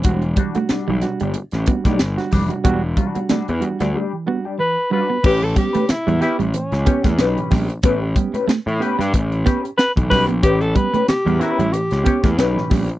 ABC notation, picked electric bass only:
X:1
M:4/4
L:1/16
Q:"Swing 16ths" 1/4=92
K:Amix
V:1 name="Picked electric bass" clef=bass
E,,,2 z3 B,,, z G,,, z A,,, z B,,, G,,, z =F,,, z | E,,,2 z3 E,, z D,, z8 | A,,,2 z3 E,, z A,,, z C,, z E,, B,,, z ^A,,, z | A,,,2 z3 A,, z G,, A,,,2 z3 B,,, B,,, ^A,,, |
A,,,2 z3 E,, z A,,, z C,, z E,, B,,, z ^A,,, z |]